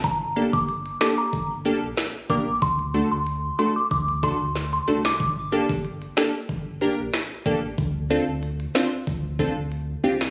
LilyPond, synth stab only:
\new Staff \with { instrumentName = "Synth stab" } { \time 4/4 \key g \minor \tempo 4 = 93 r8 <bes d' g' a'>8 r8 <bes d' g' a'>8 r8 <bes d' g' a'>8 r8 <bes d' g' bes'>8 | r8 <a d' fis' a'>8 r8 <a d' fis' a'>8 r8 <a d' fis' a'>8 r8 <a d' fis' a'>8 | r8 <bes d' g' a'>8 r8 <bes d' g' a'>8 r8 <bes d' g' bes'>8 r8 <bes d' g' a'>8 | r8 <c' d' f' a'>8 r8 <c' d' f' c''>8 r8 <c' d' f' a'>8 r8 <c' d' f' g'>8 | }